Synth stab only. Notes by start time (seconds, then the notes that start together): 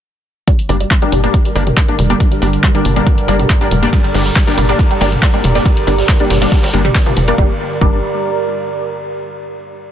0.69 G3 A#3 D4
1.02 G3 A#3 D4
1.24 G3 A#3 D4
1.56 G3 A#3 D4
1.88 G3 A#3 D4
2.10 G3 A#3 D4
2.42 G3 A#3 D4
2.75 G3 A#3 D4
2.96 G3 A#3 D4
3.28 G3 A#3 D4
3.61 G3 A#3 D4
3.83 G3 A#3 D4
4.14 G3 A#3 D4
4.47 G3 A#3 D4
4.69 G3 A#3 D4
5.01 G3 A#3 D4
5.34 G3 A#3 D4
5.55 G3 A#3 D4
5.87 G3 A#3 D4
6.20 G3 A#3 D4
6.42 G3 A#3 D4
6.73 G3 A#3 D4
7.06 G3 A#3 D4
7.28 G3 A#3 D4
7.38 G3 A#3 D4
7.81 G3 A#3 D4